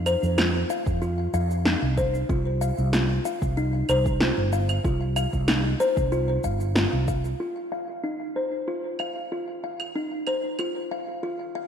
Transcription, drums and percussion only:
0.06 claves medium
0.06 shaker medium
0.23 shaker soft
0.38 snare loud
0.38 claves medium
0.38 shaker soft
0.70 shaker medium
0.86 kick loud
0.86 shaker soft
1.02 shaker soft
1.34 shaker medium
1.51 shaker soft
1.65 snare medium
1.65 shaker soft
1.97 kick medium
1.97 shaker medium
2.15 shaker soft
2.29 kick loud
2.29 shaker soft
2.62 shaker medium
2.78 shaker soft
2.93 snare loud
2.93 shaker soft
3.25 shaker medium
3.42 kick medium
3.42 shaker soft
3.57 shaker soft
3.89 claves medium
3.89 shaker medium
4.06 kick loud
4.06 shaker soft
4.21 snare medium
4.21 shaker soft
4.53 shaker medium
4.69 claves medium
4.69 shaker soft
4.84 kick loud
4.84 shaker soft
5.16 claves medium
5.16 shaker medium
5.33 kick medium
5.33 shaker soft
5.48 snare loud
5.48 claves medium
5.48 shaker soft
5.80 shaker medium
5.97 kick loud
5.97 shaker soft
6.12 shaker soft
6.44 kick medium
6.44 shaker medium
6.60 shaker soft
6.76 snare loud
6.76 shaker soft
7.08 kick medium
7.08 shaker medium
7.25 shaker soft
8.99 claves medium
9.80 claves medium
10.27 claves medium
10.59 claves medium

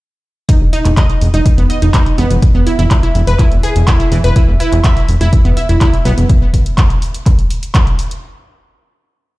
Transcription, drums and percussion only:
0.49 kick loud
0.49 closed hi-hat medium
0.73 open hi-hat loud
0.85 clap soft
0.85 closed hi-hat medium
0.97 kick loud
0.97 clap loud
0.97 closed hi-hat medium
1.10 closed hi-hat soft
1.21 open hi-hat loud
1.34 closed hi-hat medium
1.46 kick loud
1.46 closed hi-hat medium
1.58 closed hi-hat soft
1.70 open hi-hat loud
1.82 closed hi-hat medium
1.94 kick loud
1.94 clap loud
1.94 closed hi-hat medium
2.06 closed hi-hat soft
2.18 open hi-hat medium
2.31 closed hi-hat medium
2.42 kick loud
2.42 closed hi-hat medium
2.67 open hi-hat loud
2.79 closed hi-hat medium
2.91 kick loud
2.91 clap loud
2.91 closed hi-hat medium
3.03 closed hi-hat soft
3.15 open hi-hat medium
3.27 closed hi-hat medium
3.39 kick loud
3.39 clap soft
3.39 closed hi-hat medium
3.52 closed hi-hat soft
3.63 open hi-hat loud
3.76 closed hi-hat medium
3.88 kick loud
3.88 clap loud
3.88 closed hi-hat medium
4.00 closed hi-hat soft
4.12 open hi-hat loud
4.24 closed hi-hat medium
4.36 kick loud
4.36 closed hi-hat medium
4.60 open hi-hat loud
4.72 clap soft
4.72 closed hi-hat medium
4.84 kick loud
4.84 clap loud
4.84 closed hi-hat medium
4.97 closed hi-hat soft
5.08 open hi-hat loud
5.21 closed hi-hat medium
5.33 kick loud
5.33 closed hi-hat medium
5.45 closed hi-hat soft
5.57 open hi-hat loud
5.69 closed hi-hat soft
5.81 kick loud
5.81 clap loud
5.81 closed hi-hat medium
5.93 closed hi-hat soft
6.05 open hi-hat loud
6.18 closed hi-hat medium
6.29 kick loud
6.29 closed hi-hat medium
6.54 kick medium
6.54 open hi-hat loud
6.66 closed hi-hat medium
6.78 kick loud
6.78 clap loud
6.78 closed hi-hat medium
6.90 closed hi-hat soft
7.02 open hi-hat loud
7.14 closed hi-hat medium
7.26 kick loud
7.26 clap soft
7.26 closed hi-hat medium
7.39 closed hi-hat soft
7.50 open hi-hat loud
7.63 closed hi-hat medium
7.75 kick loud
7.75 clap loud
7.75 closed hi-hat medium
7.87 closed hi-hat soft
7.99 open hi-hat loud
8.11 closed hi-hat medium

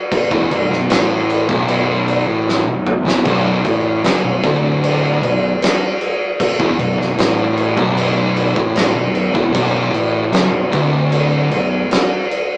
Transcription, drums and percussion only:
0.12 kick loud
0.12 crash medium
0.31 kick loud
0.51 crash medium
0.72 snare soft
0.90 snare loud
0.90 crash medium
1.30 crash medium
1.49 kick loud
1.68 crash medium
2.08 crash medium
2.49 snare medium
2.87 mid tom loud
3.08 snare medium
3.25 kick loud
3.25 crash medium
3.65 kick loud
3.65 crash medium
4.04 snare loud
4.04 crash medium
4.44 kick loud
4.44 crash medium
4.84 crash medium
5.23 crash medium
5.62 snare loud
5.62 crash medium
6.01 crash medium
6.40 kick loud
6.40 crash loud
6.60 kick loud
6.79 crash medium
7.01 snare soft
7.18 snare loud
7.18 crash medium
7.57 crash medium
7.77 kick loud
7.97 crash medium
8.37 crash medium
8.56 kick loud
8.76 snare loud
8.76 crash medium
9.15 crash medium
9.35 kick loud
9.55 kick loud
9.55 crash medium
9.94 crash medium
10.33 snare loud
10.33 crash medium
10.73 kick loud
10.73 crash medium
11.12 crash medium
11.51 crash medium
11.91 snare loud
11.91 crash medium
12.31 crash medium

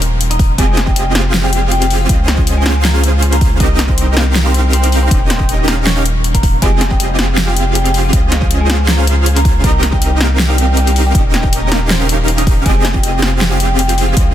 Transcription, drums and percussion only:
0.02 closed hi-hat medium
0.21 closed hi-hat medium
0.31 closed hi-hat medium
0.39 kick loud
0.39 open hi-hat medium
0.58 kick loud
0.58 closed hi-hat medium
0.77 snare medium
0.77 closed hi-hat medium
0.87 kick medium
0.96 closed hi-hat medium
1.15 snare medium
1.15 closed hi-hat medium
1.34 snare loud
1.34 closed hi-hat medium
1.53 closed hi-hat medium
1.72 closed hi-hat medium
1.82 closed hi-hat medium
1.90 open hi-hat medium
2.09 kick loud
2.09 closed hi-hat medium
2.28 snare medium
2.28 closed hi-hat medium
2.38 kick medium
2.47 closed hi-hat medium
2.66 snare medium
2.66 closed hi-hat medium
2.85 snare loud
2.85 closed hi-hat medium
3.04 closed hi-hat medium
3.22 closed hi-hat medium
3.33 closed hi-hat medium
3.41 kick loud
3.41 open hi-hat medium
3.60 kick loud
3.60 closed hi-hat medium
3.79 snare medium
3.79 closed hi-hat medium
3.89 kick medium
3.98 closed hi-hat medium
4.17 snare medium
4.17 closed hi-hat medium
4.35 snare loud
4.35 closed hi-hat medium
4.54 closed hi-hat medium
4.73 closed hi-hat medium
4.84 closed hi-hat medium
4.92 open hi-hat medium
5.11 kick loud
5.11 closed hi-hat medium
5.30 snare medium
5.30 closed hi-hat medium
5.40 kick medium
5.49 closed hi-hat medium
5.68 snare medium
5.68 closed hi-hat medium
5.87 snare loud
5.87 closed hi-hat medium
6.06 closed hi-hat medium
6.24 closed hi-hat medium
6.35 kick medium
6.35 closed hi-hat medium
6.43 kick loud
6.43 open hi-hat medium
6.62 kick loud
6.62 closed hi-hat medium
6.81 snare medium
6.81 closed hi-hat medium
6.91 kick medium
7.00 closed hi-hat medium
7.19 snare medium
7.19 closed hi-hat medium
7.38 snare loud
7.38 closed hi-hat medium
7.57 closed hi-hat medium
7.75 closed hi-hat medium
7.86 closed hi-hat medium
7.94 open hi-hat medium
8.13 kick loud
8.13 closed hi-hat medium
8.32 snare medium
8.32 closed hi-hat medium
8.42 kick medium
8.51 closed hi-hat medium
8.70 snare medium
8.70 closed hi-hat medium
8.88 snare loud
8.88 closed hi-hat medium
9.07 closed hi-hat medium
9.26 closed hi-hat medium
9.36 closed hi-hat medium
9.45 kick loud
9.45 open hi-hat medium
9.64 kick loud
9.64 closed hi-hat medium
9.83 snare medium
9.83 closed hi-hat medium
9.93 kick medium
10.02 closed hi-hat medium
10.21 snare medium
10.21 closed hi-hat medium
10.39 snare loud
10.39 closed hi-hat medium
10.58 closed hi-hat medium
10.77 closed hi-hat medium
10.87 closed hi-hat medium
10.96 open hi-hat medium
11.15 kick loud
11.15 closed hi-hat medium
11.34 snare medium
11.34 closed hi-hat medium
11.44 kick medium
11.53 closed hi-hat medium
11.72 snare medium
11.72 closed hi-hat medium
11.90 snare loud
11.90 closed hi-hat medium
12.09 closed hi-hat medium
12.28 closed hi-hat medium
12.38 closed hi-hat medium
12.47 kick loud
12.47 open hi-hat medium
12.66 kick loud
12.66 closed hi-hat medium
12.85 snare medium
12.85 closed hi-hat medium
12.95 kick medium
13.03 closed hi-hat medium
13.22 snare medium
13.22 closed hi-hat medium
13.41 snare loud
13.41 closed hi-hat medium
13.60 closed hi-hat medium
13.79 closed hi-hat medium
13.89 closed hi-hat medium
13.98 open hi-hat medium
14.17 kick loud
14.17 closed hi-hat medium

